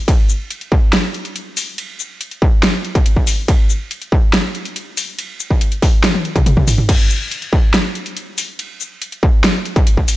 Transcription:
0.08 kick, closed hi-hat, ride
0.29 shaker
0.51 closed hi-hat, ride
0.61 closed hi-hat
0.72 kick
0.93 snare, closed hi-hat, ride
1.14 closed hi-hat
1.25 closed hi-hat
1.36 closed hi-hat, ride
1.57 open hi-hat, shaker
1.78 closed hi-hat, ride
1.99 shaker
2.21 closed hi-hat, ride
2.31 closed hi-hat
2.42 kick
2.63 snare, closed hi-hat, ride
2.85 closed hi-hat
2.95 kick, closed hi-hat
3.06 closed hi-hat, ride
3.16 kick
3.27 open hi-hat, shaker
3.48 kick, closed hi-hat, ride
3.70 shaker
3.91 closed hi-hat, ride
4.02 closed hi-hat
4.12 kick
4.33 snare, closed hi-hat, ride
4.55 closed hi-hat
4.65 closed hi-hat
4.76 closed hi-hat, ride
4.97 open hi-hat, shaker
5.19 closed hi-hat, ride
5.40 shaker
5.51 kick
5.61 closed hi-hat, ride
5.72 closed hi-hat
5.82 kick, open hi-hat
6.04 snare, closed hi-hat, high tom, ride
6.14 high tom
6.25 closed hi-hat
6.36 kick, closed hi-hat, mid tom
6.46 closed hi-hat, mid tom, ride
6.57 kick, mid tom
6.68 mid tom, open hi-hat, shaker
6.78 mid tom
6.89 kick, closed hi-hat, crash, ride
7.10 shaker
7.31 closed hi-hat, ride
7.42 closed hi-hat
7.53 kick
7.74 snare, closed hi-hat, ride
7.95 closed hi-hat
8.06 closed hi-hat
8.17 closed hi-hat, ride
8.38 open hi-hat, shaker
8.59 closed hi-hat, ride
8.80 shaker
9.02 closed hi-hat, ride
9.12 closed hi-hat
9.23 kick
9.44 snare, closed hi-hat, ride
9.65 closed hi-hat
9.76 kick, closed hi-hat
9.87 closed hi-hat, ride
9.97 kick
10.08 open hi-hat, shaker

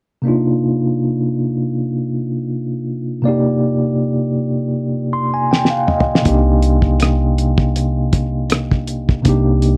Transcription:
0.22 C3 A#3 D4
0.27 D#4 F4
3.22 C3 A#3 D5
3.27 D#4 G4
5.13 C6
5.34 G#5
5.51 G5, snare
5.65 snare
5.70 F5
5.87 D#5, mid tom
6.00 floor tom
6.15 snare
6.22 C3 A#3 D4, kick, closed hi-hat
6.26 C2 D#4 G4
6.62 closed hi-hat
6.82 kick
7.00 cross-stick, closed hi-hat
7.38 closed hi-hat
7.58 kick
7.76 closed hi-hat
8.13 kick, closed hi-hat
8.50 cross-stick, closed hi-hat
8.72 kick
8.88 closed hi-hat
9.09 kick
9.22 C2 C3 A#3 D4, kick, closed hi-hat
9.27 D#4 G4
9.62 closed hi-hat

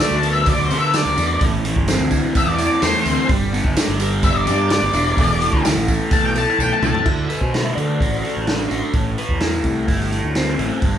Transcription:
Already playing: D3
0.00 F#3 A3 B3 F#4 D5, tambourine
0.11 D2
0.15 A5
0.23 A3 B3 F#4, open hi-hat, tambourine
0.33 E5
0.46 D3 F#3 A3 B3 F#4 D5, kick, open hi-hat, tambourine
0.58 D2
0.65 C5
0.70 D3 A3 B3 F#4, open hi-hat, tambourine
0.79 E5
0.93 D3 F#3 A3 B3 F#4 D5, snare, open hi-hat, tambourine
1.05 D2
1.17 E2 A3 B3 F#4, open hi-hat, tambourine
1.40 A1 A2 E3 B3 C4 E4, kick, open hi-hat
1.64 E3 B3 C4 E4, open hi-hat
1.76 G1, kick
1.87 E3 B3 C4 E4, snare, open hi-hat, tambourine
2.00 D2
2.10 B3 C4 E4, kick, open hi-hat, tambourine
2.35 A2 E3 A3 B3 C4 E4 E5, kick, open hi-hat, tambourine
2.47 E2 D5
2.58 B3 C4 E4 D5, open hi-hat, tambourine
2.82 E2 E3 A3 B3 C4 E4 C5, snare, open hi-hat, tambourine
3.05 D2 B3 C4 E4, open hi-hat, tambourine
3.29 G1 G2 D3 G3 B3 D4 G4, kick, open hi-hat
3.53 G3 B3 D4 G4, open hi-hat
3.64 G1, kick
3.75 G3 B3 D4 G4, snare, open hi-hat, tambourine
3.88 G1
3.99 G3 B3 D4 G4, open hi-hat, tambourine
4.22 G2 D3 G3 B3 D4 G4 E5, kick, open hi-hat, tambourine
4.35 G1 D5
4.45 G2 G3 B3 D4 G4 D5, open hi-hat, tambourine
4.69 G3 B3 D4 G4 D5, snare, open hi-hat, tambourine
4.82 G1
4.93 E1 G3 B3 D4 G4, open hi-hat, tambourine
5.17 E1 E2 B2 E3 A3 B3 A4, kick, open hi-hat, tambourine
5.40 E3 A3 B3 A4, open hi-hat, tambourine
5.53 D2, kick
5.64 E3 A3 B3 E4 A4, snare, open hi-hat, tambourine
5.76 A1
5.87 E3 A3 B3 A4, kick, open hi-hat, tambourine
6.11 E2 B2 E3 A3 B3 A4 A5, kick, open hi-hat, tambourine
6.24 B1 G5
6.35 E3 A3 B3 A4 A5, open hi-hat, tambourine
6.51 A5
6.59 B1 E3 A3 B3 A4 G5, kick, tambourine
6.73 A5
6.82 C2 E3 A3 B3 E4 A4 A5, mid tom, tambourine
6.94 floor tom
7.06 D2 D3 E4, kick, crash
7.28 A4 B4, open hi-hat
7.41 B2 C5, kick
7.54 F#4, snare, open hi-hat
7.65 E5
7.75 D3 A3 D5, open hi-hat
8.00 A1 F#4, kick, open hi-hat
8.23 A3, open hi-hat
8.37 A1
8.47 D4, snare, open hi-hat
8.70 A1 F#4, open hi-hat
8.93 A1 A2, kick, open hi-hat
9.18 B4, open hi-hat
9.29 E2, kick
9.40 E4, snare, open hi-hat
9.64 C2 A3, kick, open hi-hat
9.88 G1 E4, kick, open hi-hat
10.11 A3, open hi-hat
10.23 D2
10.35 C4, snare, open hi-hat
10.59 A1 E4, open hi-hat
10.82 G1 G2, kick, open hi-hat

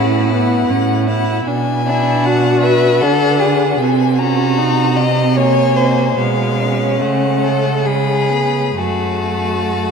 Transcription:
Already playing: A2 C#4 E4 F#5
0.30 B3 F#5
0.68 A2 C#4
1.08 E4 F#5
1.46 B2 D4 G#5
1.86 D4 E4
2.24 F#4 F#5
2.61 B4 E5
3.00 D3 D4 A4 F#5
3.40 G#4
3.78 C3 C4 G#5
4.18 C#4 F#4 A#5
4.58 D#4
4.96 C4 D#5
5.36 A#3 C#5 G#5
5.76 C5
6.18 B2 G#3 F5
6.58 C#4
7.00 C#3 A3 F#5
7.43 A4
7.85 G#3 G#4 B5
8.30 B3
8.76 F#2 A3 F#4 A5

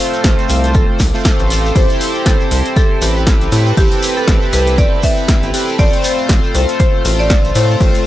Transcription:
Already playing: A3 C4 F4 A4 C5 F5 D6
0.14 closed hi-hat, shekere
0.24 A1, kick, snare, closed hi-hat, shekere
0.39 closed hi-hat, shekere
0.49 C2, open hi-hat, shekere
0.64 closed hi-hat, shekere
0.74 G1 A4, kick, closed hi-hat, shekere
0.99 C2, kick, snare, open hi-hat, shekere
1.14 A3 C4 F4 A4 C5, shekere
1.25 kick, snare, closed hi-hat, shekere
1.39 A1, closed hi-hat, shekere
1.50 open hi-hat, shekere
1.65 shekere
1.75 A1 C4 E4 G4 A4 C5 G5 B5, kick, closed hi-hat, shekere
1.90 closed hi-hat, shekere
2.01 open hi-hat, shekere
2.15 shekere
2.26 A1 A4, kick, snare, closed hi-hat, shekere
2.40 shekere
2.51 C2, open hi-hat, shekere
2.66 closed hi-hat, shekere
2.76 A4, kick, closed hi-hat, shekere
3.01 A1 C4 E4 G4 A4 B4, open hi-hat, shekere
3.16 shekere
3.27 kick, snare, closed hi-hat, shekere
3.41 closed hi-hat, shekere
3.52 A2 C4 E4 G4 A4 B4, open hi-hat, shekere
3.66 shekere
3.77 A1 C4 E4 G4 A4 B4, kick, closed hi-hat, shekere
3.92 closed hi-hat, shekere
4.03 open hi-hat, shekere
4.17 A4, shekere
4.28 A1, kick, snare, closed hi-hat, shekere
4.42 shekere
4.53 C2 B4, open hi-hat, shekere
4.67 closed hi-hat, shekere
4.78 G1 D5, kick, closed hi-hat, shekere
5.03 C4 E4 G4 A4 B4 E5, kick, open hi-hat, shekere
5.17 shekere
5.28 kick, snare, closed hi-hat, shekere
5.43 G1, closed hi-hat, shekere
5.54 C4 E4 G4 A4 B4, open hi-hat, shekere
5.68 shekere
5.78 A1 A3 C4 F4 A4 C5 D5 F5 C6, kick, closed hi-hat, shekere
5.93 closed hi-hat, shekere
6.04 open hi-hat, shekere
6.18 shekere
6.29 A1, kick, snare, closed hi-hat, shekere
6.44 shekere
6.55 C2 C5, open hi-hat, shekere
6.69 closed hi-hat, shekere
6.80 C5, kick, closed hi-hat, shekere
7.05 A1 A3 C4 F4 A4 C5, open hi-hat, shekere
7.19 D5, shekere
7.30 kick, snare, closed hi-hat, shekere
7.45 closed hi-hat, shekere
7.55 A2 A3 C4 F4 A4 C5, open hi-hat, shekere
7.70 shekere
7.80 A1 A3 C4 F4 A4 C5, kick, closed hi-hat, shekere
7.95 closed hi-hat, shekere

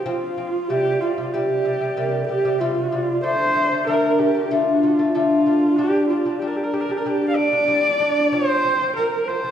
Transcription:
0.03 F3 C4 F4
0.38 F3 C4
0.68 C3 G3 G4
0.92 G4
0.99 C3 G3 F4
1.18 C3 G3
1.32 C3 G3 G4
1.65 C3 G3
1.80 C3 G3
1.95 C3 G3 A#4
2.27 C3 G3 G4
2.45 C3 G3
2.60 C3 G3 F4
2.92 C3 G3
3.21 D3 A3 C5
3.55 D3 A3
3.65 D5
3.69 D3 A3 C5
3.86 D3 A3 A#4
4.19 D3 A3 G4
4.34 D3 A3
4.49 D3 A3 F4
4.83 D3 A3
4.99 D3 A3
5.12 D3 A3 F4
5.46 D3 A3
5.76 G3 D4 G4
6.08 G3 D4 F4
6.25 G3 D4
6.39 G3 D4 G4
6.47 A#4
6.57 G4
6.64 A#4
6.73 G3 D4 G4
6.81 A#4
6.89 G3 D4 G4
6.97 A#4
7.04 G3 D4 G4
7.29 F5
7.36 G3 D4 D5
7.53 G3 D4
7.68 G3 D4
7.99 G3 D4 D5
8.31 F3 C4 C5
8.65 F3 C4
8.77 F3 C5
8.82 C4
8.93 A#4
8.97 F3 C4
9.26 F3 C4 C5
9.44 F3 C4

